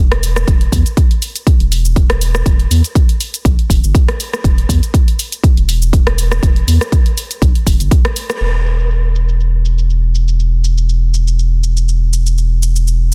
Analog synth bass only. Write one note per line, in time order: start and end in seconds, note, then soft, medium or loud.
0.00 0.44 E1 medium
0.47 0.68 E1 loud
0.72 0.83 E2 medium
1.60 2.06 E1 medium
2.10 2.43 E1 loud
2.46 2.67 E1 loud
2.71 2.82 E2 medium
3.45 3.56 B1 medium
3.70 3.81 E1 medium
3.83 3.93 G1 medium
4.44 4.65 E1 medium
4.69 4.80 E2 medium
5.57 6.03 E1 medium
6.06 6.39 E1 loud
6.43 6.63 E1 loud
6.67 6.78 E2 loud
7.42 7.53 B1 loud
7.67 7.77 E1 medium
7.80 7.89 G1 medium
8.41 13.14 E1 medium